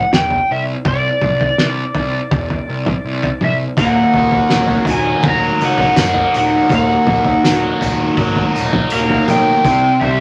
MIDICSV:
0, 0, Header, 1, 6, 480
1, 0, Start_track
1, 0, Tempo, 732601
1, 568, Time_signature, 4, 2, 24, 8
1, 6684, End_track
2, 0, Start_track
2, 0, Title_t, "Electric slide guitar"
2, 0, Program_c, 0, 29
2, 0, Note_on_c, 0, 78, 99
2, 88, Note_off_c, 0, 78, 0
2, 90, Note_on_c, 0, 79, 92
2, 336, Note_off_c, 0, 79, 0
2, 340, Note_on_c, 0, 76, 82
2, 403, Note_off_c, 0, 76, 0
2, 573, Note_on_c, 0, 74, 90
2, 2255, Note_off_c, 0, 74, 0
2, 2258, Note_on_c, 0, 76, 89
2, 2320, Note_off_c, 0, 76, 0
2, 2483, Note_on_c, 0, 78, 81
2, 3176, Note_off_c, 0, 78, 0
2, 3216, Note_on_c, 0, 80, 75
2, 3433, Note_off_c, 0, 80, 0
2, 3468, Note_on_c, 0, 82, 88
2, 3679, Note_off_c, 0, 82, 0
2, 3702, Note_on_c, 0, 78, 77
2, 3924, Note_off_c, 0, 78, 0
2, 3932, Note_on_c, 0, 78, 75
2, 4170, Note_off_c, 0, 78, 0
2, 4178, Note_on_c, 0, 78, 87
2, 4414, Note_off_c, 0, 78, 0
2, 4421, Note_on_c, 0, 78, 74
2, 5347, Note_off_c, 0, 78, 0
2, 5852, Note_on_c, 0, 77, 98
2, 6072, Note_off_c, 0, 77, 0
2, 6095, Note_on_c, 0, 79, 100
2, 6557, Note_on_c, 0, 76, 96
2, 6586, Note_off_c, 0, 79, 0
2, 6684, Note_off_c, 0, 76, 0
2, 6684, End_track
3, 0, Start_track
3, 0, Title_t, "Transistor combo organ"
3, 0, Program_c, 1, 18
3, 2479, Note_on_c, 1, 70, 67
3, 2483, Note_on_c, 1, 58, 54
3, 2485, Note_on_c, 1, 54, 57
3, 2486, Note_on_c, 1, 63, 54
3, 6298, Note_off_c, 1, 70, 0
3, 6300, Note_off_c, 1, 58, 0
3, 6301, Note_off_c, 1, 54, 0
3, 6302, Note_off_c, 1, 63, 0
3, 6311, Note_on_c, 1, 67, 54
3, 6316, Note_on_c, 1, 64, 59
3, 6316, Note_on_c, 1, 72, 66
3, 6317, Note_on_c, 1, 60, 63
3, 6684, Note_off_c, 1, 60, 0
3, 6684, Note_off_c, 1, 64, 0
3, 6684, Note_off_c, 1, 67, 0
3, 6684, Note_off_c, 1, 72, 0
3, 6684, End_track
4, 0, Start_track
4, 0, Title_t, "Distorted electric guitar"
4, 0, Program_c, 2, 30
4, 2484, Note_on_c, 2, 39, 74
4, 2725, Note_on_c, 2, 51, 61
4, 2963, Note_on_c, 2, 54, 72
4, 3192, Note_off_c, 2, 51, 0
4, 3200, Note_on_c, 2, 51, 61
4, 3441, Note_off_c, 2, 54, 0
4, 3448, Note_on_c, 2, 54, 61
4, 3682, Note_off_c, 2, 39, 0
4, 3686, Note_on_c, 2, 63, 78
4, 3920, Note_on_c, 2, 58, 64
4, 4155, Note_off_c, 2, 51, 0
4, 4162, Note_on_c, 2, 51, 65
4, 4398, Note_on_c, 2, 39, 72
4, 4638, Note_off_c, 2, 51, 0
4, 4646, Note_off_c, 2, 54, 0
4, 4646, Note_on_c, 2, 51, 63
4, 4882, Note_on_c, 2, 54, 72
4, 4885, Note_off_c, 2, 63, 0
4, 5110, Note_off_c, 2, 51, 0
4, 5118, Note_on_c, 2, 51, 59
4, 5122, Note_off_c, 2, 58, 0
4, 5349, Note_off_c, 2, 54, 0
4, 5357, Note_on_c, 2, 54, 72
4, 5598, Note_on_c, 2, 63, 73
4, 5602, Note_off_c, 2, 39, 0
4, 5841, Note_on_c, 2, 58, 69
4, 6079, Note_off_c, 2, 51, 0
4, 6086, Note_on_c, 2, 51, 66
4, 6322, Note_off_c, 2, 54, 0
4, 6323, Note_off_c, 2, 63, 0
4, 6323, Note_on_c, 2, 48, 71
4, 6324, Note_off_c, 2, 58, 0
4, 6326, Note_off_c, 2, 51, 0
4, 6565, Note_on_c, 2, 55, 68
4, 6684, Note_off_c, 2, 48, 0
4, 6684, Note_off_c, 2, 55, 0
4, 6684, End_track
5, 0, Start_track
5, 0, Title_t, "Picked electric bass"
5, 0, Program_c, 3, 34
5, 93, Note_on_c, 3, 28, 76
5, 248, Note_off_c, 3, 28, 0
5, 332, Note_on_c, 3, 36, 79
5, 487, Note_off_c, 3, 36, 0
5, 558, Note_on_c, 3, 36, 94
5, 717, Note_off_c, 3, 36, 0
5, 807, Note_on_c, 3, 36, 85
5, 963, Note_off_c, 3, 36, 0
5, 1045, Note_on_c, 3, 36, 69
5, 1201, Note_off_c, 3, 36, 0
5, 1280, Note_on_c, 3, 36, 81
5, 1438, Note_off_c, 3, 36, 0
5, 1521, Note_on_c, 3, 28, 82
5, 1678, Note_off_c, 3, 28, 0
5, 1761, Note_on_c, 3, 36, 85
5, 1918, Note_off_c, 3, 36, 0
5, 1995, Note_on_c, 3, 36, 72
5, 2154, Note_off_c, 3, 36, 0
5, 2239, Note_on_c, 3, 36, 88
5, 2397, Note_off_c, 3, 36, 0
5, 2477, Note_on_c, 3, 27, 93
5, 2635, Note_off_c, 3, 27, 0
5, 2719, Note_on_c, 3, 27, 90
5, 2876, Note_off_c, 3, 27, 0
5, 2962, Note_on_c, 3, 27, 71
5, 3118, Note_off_c, 3, 27, 0
5, 3197, Note_on_c, 3, 27, 83
5, 3355, Note_off_c, 3, 27, 0
5, 3433, Note_on_c, 3, 27, 81
5, 3592, Note_off_c, 3, 27, 0
5, 3676, Note_on_c, 3, 37, 85
5, 3834, Note_off_c, 3, 37, 0
5, 3920, Note_on_c, 3, 30, 77
5, 4077, Note_off_c, 3, 30, 0
5, 4165, Note_on_c, 3, 27, 80
5, 4320, Note_off_c, 3, 27, 0
5, 4393, Note_on_c, 3, 27, 97
5, 4552, Note_off_c, 3, 27, 0
5, 4648, Note_on_c, 3, 27, 89
5, 4803, Note_off_c, 3, 27, 0
5, 4885, Note_on_c, 3, 27, 64
5, 5041, Note_off_c, 3, 27, 0
5, 5127, Note_on_c, 3, 27, 81
5, 5283, Note_off_c, 3, 27, 0
5, 5358, Note_on_c, 3, 32, 78
5, 5517, Note_off_c, 3, 32, 0
5, 5611, Note_on_c, 3, 27, 85
5, 5765, Note_off_c, 3, 27, 0
5, 5844, Note_on_c, 3, 27, 71
5, 6001, Note_off_c, 3, 27, 0
5, 6086, Note_on_c, 3, 35, 84
5, 6243, Note_off_c, 3, 35, 0
5, 6322, Note_on_c, 3, 36, 92
5, 6480, Note_off_c, 3, 36, 0
5, 6566, Note_on_c, 3, 36, 81
5, 6684, Note_off_c, 3, 36, 0
5, 6684, End_track
6, 0, Start_track
6, 0, Title_t, "Drums"
6, 83, Note_on_c, 9, 47, 73
6, 85, Note_on_c, 9, 38, 81
6, 149, Note_off_c, 9, 47, 0
6, 150, Note_off_c, 9, 38, 0
6, 200, Note_on_c, 9, 43, 67
6, 265, Note_off_c, 9, 43, 0
6, 557, Note_on_c, 9, 43, 87
6, 558, Note_on_c, 9, 36, 107
6, 622, Note_off_c, 9, 43, 0
6, 624, Note_off_c, 9, 36, 0
6, 796, Note_on_c, 9, 43, 64
6, 796, Note_on_c, 9, 47, 76
6, 861, Note_off_c, 9, 43, 0
6, 861, Note_off_c, 9, 47, 0
6, 922, Note_on_c, 9, 43, 83
6, 987, Note_off_c, 9, 43, 0
6, 1037, Note_on_c, 9, 38, 68
6, 1103, Note_off_c, 9, 38, 0
6, 1275, Note_on_c, 9, 43, 89
6, 1340, Note_off_c, 9, 43, 0
6, 1515, Note_on_c, 9, 43, 80
6, 1517, Note_on_c, 9, 36, 111
6, 1581, Note_off_c, 9, 43, 0
6, 1582, Note_off_c, 9, 36, 0
6, 1640, Note_on_c, 9, 43, 71
6, 1705, Note_off_c, 9, 43, 0
6, 1876, Note_on_c, 9, 43, 80
6, 1876, Note_on_c, 9, 47, 73
6, 1942, Note_off_c, 9, 43, 0
6, 1942, Note_off_c, 9, 47, 0
6, 2118, Note_on_c, 9, 43, 81
6, 2183, Note_off_c, 9, 43, 0
6, 2234, Note_on_c, 9, 47, 73
6, 2299, Note_off_c, 9, 47, 0
6, 2469, Note_on_c, 9, 43, 84
6, 2474, Note_on_c, 9, 36, 105
6, 2476, Note_on_c, 9, 54, 53
6, 2535, Note_off_c, 9, 43, 0
6, 2540, Note_off_c, 9, 36, 0
6, 2541, Note_off_c, 9, 54, 0
6, 2711, Note_on_c, 9, 43, 72
6, 2776, Note_off_c, 9, 43, 0
6, 2826, Note_on_c, 9, 43, 77
6, 2892, Note_off_c, 9, 43, 0
6, 2947, Note_on_c, 9, 38, 63
6, 2959, Note_on_c, 9, 54, 73
6, 3013, Note_off_c, 9, 38, 0
6, 3025, Note_off_c, 9, 54, 0
6, 3064, Note_on_c, 9, 43, 79
6, 3129, Note_off_c, 9, 43, 0
6, 3179, Note_on_c, 9, 43, 90
6, 3189, Note_on_c, 9, 54, 67
6, 3244, Note_off_c, 9, 43, 0
6, 3255, Note_off_c, 9, 54, 0
6, 3426, Note_on_c, 9, 43, 81
6, 3431, Note_on_c, 9, 36, 117
6, 3433, Note_on_c, 9, 54, 23
6, 3491, Note_off_c, 9, 43, 0
6, 3497, Note_off_c, 9, 36, 0
6, 3498, Note_off_c, 9, 54, 0
6, 3674, Note_on_c, 9, 54, 62
6, 3739, Note_off_c, 9, 54, 0
6, 3786, Note_on_c, 9, 43, 78
6, 3786, Note_on_c, 9, 47, 72
6, 3852, Note_off_c, 9, 43, 0
6, 3852, Note_off_c, 9, 47, 0
6, 3907, Note_on_c, 9, 47, 78
6, 3907, Note_on_c, 9, 54, 83
6, 3908, Note_on_c, 9, 38, 83
6, 3973, Note_off_c, 9, 47, 0
6, 3973, Note_off_c, 9, 54, 0
6, 3974, Note_off_c, 9, 38, 0
6, 4025, Note_on_c, 9, 43, 76
6, 4090, Note_off_c, 9, 43, 0
6, 4155, Note_on_c, 9, 54, 69
6, 4220, Note_off_c, 9, 54, 0
6, 4386, Note_on_c, 9, 43, 85
6, 4392, Note_on_c, 9, 36, 101
6, 4398, Note_on_c, 9, 54, 62
6, 4451, Note_off_c, 9, 43, 0
6, 4457, Note_off_c, 9, 36, 0
6, 4464, Note_off_c, 9, 54, 0
6, 4631, Note_on_c, 9, 43, 71
6, 4631, Note_on_c, 9, 47, 73
6, 4696, Note_off_c, 9, 43, 0
6, 4696, Note_off_c, 9, 47, 0
6, 4747, Note_on_c, 9, 43, 84
6, 4813, Note_off_c, 9, 43, 0
6, 4877, Note_on_c, 9, 38, 69
6, 4879, Note_on_c, 9, 54, 83
6, 4943, Note_off_c, 9, 38, 0
6, 4944, Note_off_c, 9, 54, 0
6, 5117, Note_on_c, 9, 43, 82
6, 5125, Note_on_c, 9, 54, 74
6, 5182, Note_off_c, 9, 43, 0
6, 5190, Note_off_c, 9, 54, 0
6, 5352, Note_on_c, 9, 43, 73
6, 5355, Note_on_c, 9, 36, 95
6, 5364, Note_on_c, 9, 54, 22
6, 5418, Note_off_c, 9, 43, 0
6, 5421, Note_off_c, 9, 36, 0
6, 5430, Note_off_c, 9, 54, 0
6, 5477, Note_on_c, 9, 43, 65
6, 5542, Note_off_c, 9, 43, 0
6, 5607, Note_on_c, 9, 54, 63
6, 5672, Note_off_c, 9, 54, 0
6, 5720, Note_on_c, 9, 43, 78
6, 5720, Note_on_c, 9, 47, 79
6, 5786, Note_off_c, 9, 43, 0
6, 5786, Note_off_c, 9, 47, 0
6, 5832, Note_on_c, 9, 54, 90
6, 5898, Note_off_c, 9, 54, 0
6, 5960, Note_on_c, 9, 43, 71
6, 6026, Note_off_c, 9, 43, 0
6, 6080, Note_on_c, 9, 47, 81
6, 6080, Note_on_c, 9, 54, 69
6, 6145, Note_off_c, 9, 47, 0
6, 6146, Note_off_c, 9, 54, 0
6, 6319, Note_on_c, 9, 43, 77
6, 6320, Note_on_c, 9, 36, 99
6, 6321, Note_on_c, 9, 54, 68
6, 6385, Note_off_c, 9, 43, 0
6, 6386, Note_off_c, 9, 36, 0
6, 6387, Note_off_c, 9, 54, 0
6, 6560, Note_on_c, 9, 43, 76
6, 6626, Note_off_c, 9, 43, 0
6, 6684, End_track
0, 0, End_of_file